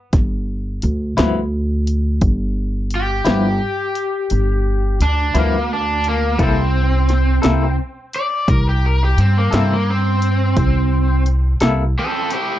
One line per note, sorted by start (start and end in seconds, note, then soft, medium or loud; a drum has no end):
0.13 0.79 G1 medium
0.13 kick loud
0.13 snare soft
0.13 closed hi-hat medium
0.82 1.15 D2 medium
0.82 closed hi-hat medium
1.17 2.19 D2 loud
1.17 1.39 G2 medium
1.17 1.39 F3 medium
1.17 1.39 B3 medium
1.17 1.38 E4 medium
1.17 snare medium
1.17 closed hi-hat medium
1.87 closed hi-hat soft
2.21 3.22 G1 medium
2.21 kick medium
2.21 closed hi-hat medium
2.90 closed hi-hat soft
2.95 4.98 G4 medium
3.25 3.59 G1 medium
3.25 3.48 G2 medium
3.25 3.47 F3 soft
3.25 3.47 B3 medium
3.25 3.47 E4 medium
3.25 snare medium
3.25 closed hi-hat medium
3.95 closed hi-hat medium
4.30 4.97 G1 medium
4.30 closed hi-hat medium
5.00 5.32 D2 medium
5.00 5.35 D4 medium
5.00 closed hi-hat medium
5.34 6.35 D2 medium
5.34 5.56 G2 soft
5.34 5.56 F3 medium
5.34 5.70 A#3 medium
5.34 5.56 B3 medium
5.34 5.56 E4 medium
5.34 closed hi-hat medium
5.73 6.05 D4 medium
6.04 closed hi-hat soft
6.09 6.40 A#3 medium
6.39 7.40 C2 medium
6.39 6.60 C3 medium
6.39 6.60 A#3 medium
6.39 6.61 E4 medium
6.39 6.61 A4 medium
6.39 kick loud
6.39 closed hi-hat medium
6.43 7.76 C4 medium
7.09 snare soft
7.09 closed hi-hat medium
7.42 7.76 C2 medium
7.42 7.65 C3 medium
7.42 7.64 A#3 medium
7.42 7.64 E4 medium
7.42 7.64 A4 medium
7.42 snare medium
7.42 closed hi-hat medium
8.13 8.48 D5 medium
8.13 closed hi-hat medium
8.48 9.13 C2 medium
8.48 8.66 A#4 medium
8.48 kick medium
8.48 closed hi-hat medium
8.69 8.84 G4 medium
8.86 9.01 A#4 medium
9.04 9.19 G4 medium
9.18 9.49 G2 medium
9.18 9.35 C4 medium
9.18 closed hi-hat medium
9.38 9.53 A#3 medium
9.51 10.52 G2 medium
9.51 9.73 C3 medium
9.51 9.73 A#3 medium
9.51 9.73 E4 medium
9.51 9.72 A4 medium
9.51 snare medium
9.51 closed hi-hat medium
9.55 9.71 C4 medium
9.74 9.88 A#3 medium
9.90 11.23 C4 medium
10.22 closed hi-hat soft
10.57 11.57 C2 medium
10.57 kick loud
10.57 closed hi-hat medium
11.26 closed hi-hat medium
11.60 11.93 C2 medium
11.60 11.82 C3 medium
11.60 11.82 A#3 medium
11.60 11.82 E4 medium
11.60 11.81 A4 medium
11.60 snare loud
11.60 closed hi-hat medium
11.99 12.32 C4 medium
11.99 12.31 A4 medium
12.30 12.59 E4 medium
12.30 12.59 G4 medium
12.30 closed hi-hat medium